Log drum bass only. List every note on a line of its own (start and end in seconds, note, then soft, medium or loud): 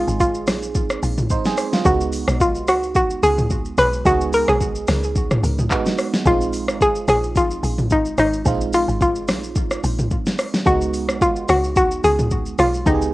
0.08 0.49 G#1 medium
0.47 0.99 A#1 loud
1.03 1.28 A#1 medium
1.85 2.25 C#2 loud
2.28 2.69 B1 medium
2.68 3.19 C#2 loud
3.23 3.74 C#2 medium
3.78 4.04 B1 loud
4.05 4.45 C#2 loud
4.48 4.85 B1 medium
4.88 5.39 C#2 loud
5.43 5.69 C#2 medium
6.26 6.70 A#1 loud
6.68 7.05 G#1 medium
7.08 7.59 A#1 loud
7.63 8.14 A#1 medium
8.18 8.44 G#1 loud
8.46 8.86 A#1 loud
8.88 9.30 G#1 medium
9.28 9.80 A#1 loud
9.84 10.09 A#1 loud
10.66 11.10 C#2 loud
11.09 11.46 B1 medium
11.49 12.00 C#2 loud
12.04 12.55 C#2 medium
12.59 12.84 B1 loud
12.86 13.14 C#2 loud